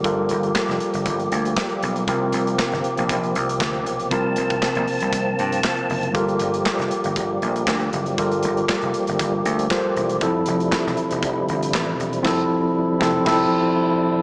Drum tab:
CC |----------------|----------------|----------------|----------------|
HH |x-xx-xxxxxxx-xxx|x-xx-xxxxxxx-xxx|x-xx-xoxx-xx-xox|xxxx-xxxx-xx-xxx|
CP |----x-------x---|----x-------x---|----x-------x---|----x-------x---|
SD |----oo------o---|----oo------o---|----o-------o---|----oo------o---|
BD |o---o---o---o---|o---o---o---o---|o--oo---o---o---|o---o---o---o---|

CC |----------------|----------------|x-------x-------|
HH |xxxx-xxxx-xx--xx|x-xx--xxx-xx--xx|----------------|
CP |----x-------x---|----x-------x---|----------------|
SD |----o-------o---|----oo------o---|o-----o-o-------|
BD |o---o---o---o---|o---o---o---o---|o-----o-o-------|